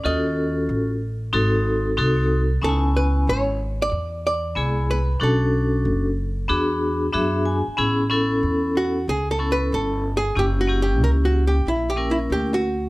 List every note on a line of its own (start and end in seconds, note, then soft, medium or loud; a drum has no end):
0.04 0.66 D#2 medium
0.04 0.89 C#4 medium
0.04 0.90 F4 medium
0.04 0.90 F#4 medium
0.04 0.90 A4 medium
0.04 2.27 D#5 medium
0.69 1.30 A1 medium
1.33 1.95 G#1 loud
1.33 1.88 C4 medium
1.33 1.88 D#4 medium
1.33 1.88 F#4 medium
1.33 1.89 A4 loud
1.97 2.59 C2 medium
1.97 2.40 C4 medium
1.97 2.41 D#4 medium
1.97 2.41 F#4 medium
1.97 2.41 A4 loud
2.61 3.24 C#2 loud
2.61 3.47 B3 medium
2.61 3.48 C#4 medium
2.61 2.71 D#4 medium
2.61 2.93 A4 medium
2.61 3.48 G#5 medium
2.69 3.51 E4 medium
2.97 3.29 B4 medium
3.27 3.88 G#1 medium
3.27 3.82 C#5 medium
3.82 4.25 D5 loud
3.92 4.53 E2 loud
4.27 4.86 D5 loud
4.55 5.17 C2 medium
4.55 4.99 G#3 medium
4.55 4.99 B3 medium
4.55 4.99 E4 medium
4.55 4.99 G#4 medium
4.91 5.22 B4 medium
5.20 5.82 B1 medium
5.20 6.06 C#4 medium
5.20 6.06 D4 medium
5.20 6.06 F#4 medium
5.20 6.06 A4 medium
5.20 5.82 A4 medium
5.85 6.46 F#1 medium
6.48 7.11 E2 medium
6.48 7.04 B3 medium
6.48 7.04 D4 medium
6.48 7.04 F#4 medium
6.48 7.05 G#4 loud
7.13 7.64 F#2 medium
7.13 7.56 B3 medium
7.13 7.56 D4 medium
7.13 7.57 F#4 medium
7.13 7.57 G#4 medium
7.13 7.44 E5 medium
7.46 7.76 G#5 medium
7.67 muted upright bass stroke soft
7.77 8.40 A1 medium
7.77 8.01 B3 medium
7.77 8.02 C#4 medium
7.77 8.02 E4 medium
7.77 8.02 G#4 medium
8.10 8.96 B3 medium
8.10 8.96 C#4 medium
8.10 8.96 E4 medium
8.10 8.96 A4 medium
8.43 9.04 E2 medium
8.77 9.09 F#4 medium
9.08 9.69 C#2 medium
9.08 9.28 G#4 loud
9.31 9.52 A4 medium
9.39 10.01 B3 medium
9.39 10.01 C#4 medium
9.39 10.02 E4 medium
9.39 10.02 A4 medium
9.52 9.73 B4 medium
9.72 10.33 G1 medium
9.72 10.17 A4 medium
10.17 10.38 G#4 medium
10.35 11.01 F#1 loud
10.35 10.60 A#3 medium
10.35 10.60 C#4 medium
10.35 10.60 E4 medium
10.35 10.60 G4 medium
10.35 10.44 G4 medium
10.61 10.81 F#4 medium
10.68 11.54 A#3 medium
10.68 11.54 C#4 medium
10.68 11.54 E4 medium
10.68 11.54 G4 medium
10.82 11.01 G4 medium
11.01 11.62 C#2 medium
11.01 11.09 A#4 medium
11.25 11.46 F#4 medium
11.47 11.68 G4 medium
11.66 12.27 A#1 medium
11.66 11.89 E4 medium
11.90 12.08 G4 medium
11.96 12.59 A#3 medium
11.96 12.59 C#4 medium
11.96 12.59 E4 medium
11.96 12.60 A#4 medium
12.11 12.17 E4 medium
12.30 12.89 D2 medium
12.30 12.53 G4 medium
12.54 12.89 F#4 medium